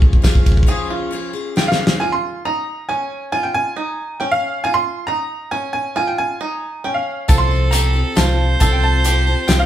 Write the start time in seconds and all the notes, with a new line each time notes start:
Already playing: F3 C#4 F4 G#4
0.02 kick
0.13 kick
0.22 F3 C#4 F4 G#4, kick, snare, ride, tambourine
0.35 kick
0.46 kick, ride
0.52 kick
0.57 kick
0.63 C#3, kick
0.67 F3 C#4 F4 G#4
0.90 F4
1.11 F3 C#4 F4 G#4
1.33 C#4 F4 G#4
1.56 F3 C#4 F4 G#4 G5, snare
1.68 F5, snare
1.87 snare
2.00 F4 G#5
2.12 C6
2.45 D#4 A#5
2.89 C#4 G#5
3.32 F4 G#5
3.43 G5
3.54 G#5
3.77 D#4
4.20 C#4 G5
4.32 F5
4.64 F4 G#5
4.74 C6
5.07 D#4 A#5
5.51 C#4 G#5
5.73 G#5
5.96 F4 G#5
6.07 G5
6.18 G#5
6.41 D#4
6.84 C#4 G5
6.94 F5
7.28 C2 C3 F3 C4 F4 A4 A5, kick, closed hi-hat, tambourine
7.38 C6
7.51 tambourine
7.71 F3 C4 F4 G4 A4 A#5, closed hi-hat, tambourine
7.93 C4 F4 A4
8.15 C2 F3 C4 F4 A4 C5 A5, snare, closed hi-hat, tambourine
8.60 C2 C3 F3 C4 F4 A4 A5, kick, closed hi-hat, tambourine
8.73 G5
8.82 A5, tambourine
9.04 F3 C4 F4 G4 A4, closed hi-hat, tambourine
9.27 C4 F4 A4
9.48 C2 F3 C4 F4 G5, snare, closed hi-hat, tambourine
9.52 A4
9.59 F5